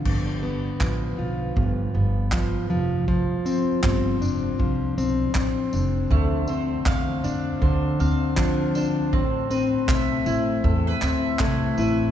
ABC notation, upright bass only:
X:1
M:4/4
L:1/8
Q:"Swing 16ths" 1/4=79
K:Gmix
V:1 name="Upright bass" clef=bass
G,,,2 A,,, B,,, G,,, G,,,2 F,,,- | F,,, z G,,, F,,, C,, B,,, A,,, F,,, | D,,2 E,, F,, D,, D,,2 z | A,,,2 B,,, A,,, E,, D,, C,, A,,, |]